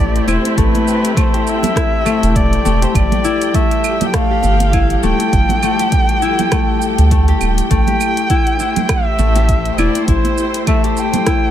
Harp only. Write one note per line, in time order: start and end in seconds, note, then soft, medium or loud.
0.00 0.57 A3 medium
0.00 0.27 E4 loud
0.00 1.33 G4 medium
0.28 1.75 E4 loud
0.57 1.16 A3 loud
1.17 2.05 A3 loud
1.34 2.82 G4 medium
1.76 3.24 E4 loud
2.05 2.65 A3 loud
2.65 3.54 A3 loud
2.82 4.30 G4 medium
3.25 4.73 E4 loud
3.54 4.13 A3 loud
4.14 5.03 A3 medium
4.31 5.79 G4 medium
4.73 6.22 E4 loud
5.03 5.62 A3 loud
5.63 6.51 A3 loud
5.80 7.28 G4 medium
6.22 8.30 E4 loud
6.52 7.11 A3 medium
7.11 7.70 A3 loud
7.28 7.87 G4 medium
7.71 9.19 A3 loud
7.88 9.36 G4 medium
8.30 8.59 E4 loud
8.60 9.78 E4 medium
9.19 10.67 A3 medium
9.36 10.84 G4 medium
9.79 10.08 E4 loud
10.09 11.27 E4 medium
10.68 11.51 A3 loud
10.84 11.51 G4 medium
11.27 11.51 E4 medium